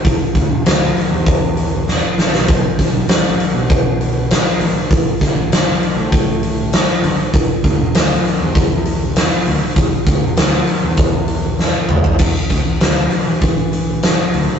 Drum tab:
CC |----------------|----------------|----------------|----------------|
HH |o-o-o-o-o-o-----|o-o-o-o-o-o-o-o-|o-o-o-o-o-o-o-o-|o-o-o-o-o-o-o-o-|
SD |----o-------o-oo|--o-o-------o---|--o-o-------o---|----o-------o---|
T2 |----------------|----------------|----------------|----------------|
FT |----------------|----------------|----------------|----------------|
BD |o-o-----o-------|o-o-----o-------|o-o-----o-------|o-o-----o-------|

CC |----------------|x---------------|
HH |o-o-o-o-o-o-----|--o-o-o-o-o-o-o-|
SD |----o-------o---|--o-o-------o---|
T2 |--------------o-|----------------|
FT |---------------o|----------------|
BD |o-o-----o-------|o-o-----o-------|